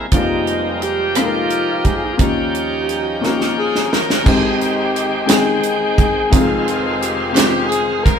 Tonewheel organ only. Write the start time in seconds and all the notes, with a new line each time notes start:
0.12 F3 A#3 C4 D#4 G5
2.21 F3 C#4 D#4 F4
2.29 G5
4.25 D#3 G#3 C4 G5
6.31 D#3 G#3 C4 F4